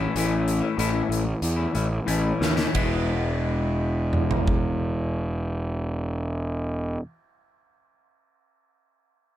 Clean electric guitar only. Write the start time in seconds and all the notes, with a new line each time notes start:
Already playing: A2 E3
0.00 A3 C#4 E4
0.15 A2 E3 A3 C#4 E4
0.61 A3 C#4 E4
0.77 A2 E3 A3 C#4 E4
0.92 A3 C#4 E4
1.24 muted clean electric guitar stroke
1.56 A3 C#4 E4
1.72 E3 A3 C#4 E4
1.89 muted clean electric guitar stroke
2.05 A2 E3 A3 C#4 E4
2.39 E3 A3 C#4 E4
2.56 A3 C#4 E4
2.73 E2 B2 E3 G#3 B3 E4